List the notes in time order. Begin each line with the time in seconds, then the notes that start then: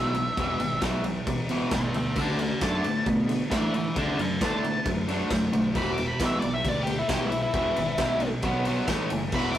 Already playing: B1 E2 B2 E3 E5
0.15 E2 B2, ride
0.37 E1 E2 B2 E3, kick, ride
0.60 G#1 E2 B2, ride
0.81 B1 E2 B2 E3, kick, snare, ride
1.04 E2 B2, ride
1.27 A1 E2 B2, kick, ride
1.49 E2 B2 E3, ride
1.71 G#1 E2 B2 G#4, kick, snare, ride
1.76 E5
1.94 D2 E2 B2 G#4, ride
1.98 E5
2.16 D2 D3 A3 D4, kick, crash
2.21 F#5 A5
2.39 D3 A3 F#5 A5, ride
2.61 F#2 D3 A3 D4 A5, kick, snare, ride
2.84 A2 D3 A3, ride
3.06 B2 D3 A3, kick, ride
3.29 D3 A3, ride
3.51 A2 D3 A3 D4 B4 E5, kick, snare, ride
3.74 D3 A3 B4 E5, ride
3.96 D2 D3 A3 D4 F#5 A5, kick, ride
4.19 F#2 D3 A3 F#5 A5, ride
4.41 A2 D3 A3 D4, kick, snare, ride
4.45 A5
4.64 D3 A3, ride
4.86 F#2 D3 A3, kick, ride
5.08 D3 A3 D4, ride
5.30 F#2 D3 A3, kick, snare, ride
5.53 B1 D3 A3, ride
5.74 E1 E2 B2 E3 B5, kick, crash
5.94 D6
5.98 E2 B2, ride
6.08 B5
6.20 A1 E2 B2 E3, kick, snare, ride
6.25 E5
6.40 E2 D5, ride
6.44 B1 B2
6.54 E5
6.64 D2 E2 B2, kick, ride
6.69 D5
6.83 E2 G4, ride
6.88 B2
6.99 E4
7.08 B1 E2 B2 E3, kick, snare, ride
7.14 G4
7.27 E2 B2 E4
7.32 ride
7.42 E4
7.54 E1 E2 B2 E3, kick, ride
7.76 G#1 E2 B2, ride
7.98 B1 E2 B2 E3, kick, snare, ride
8.20 E2 B2, ride
8.42 B1 B2 F#3 B3, kick, ride
8.65 B2 F#3 B3, ride
8.87 A1 A2 E3 A3, kick, snare, ride
9.10 F#1 A2 E3, ride
9.32 E1 E2 B2 E3 B5, kick, crash
9.52 D6, ride